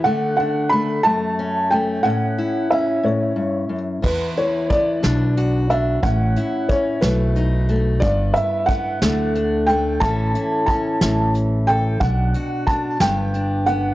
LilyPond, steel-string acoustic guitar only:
\new Staff \with { instrumentName = "Steel-string acoustic guitar" } { \time 6/8 \key e \dorian \tempo 4. = 60 << { a8 d'8 a8 a8 cis'8 a8 | cis'8 e'8 cis'2 | b8 e'8 b8 d'8 fis'8 d'8 | cis'8 e'8 cis'8 a8 dis'8 a8 |
b8 e'8 b8 a8 d'8 a8 | <e cis' e' a'>8 e'8 cis'4. a'8 | d'8 fis'8 d'8 b8 d'8 b8 | } \\ { d4. fis,4. | a,4. a,8 g,8 fis,8 | e,4. b,4. | a,4. b,4. |
g,4. d4. | a,4. e4. | b,4. g,4. | } >> }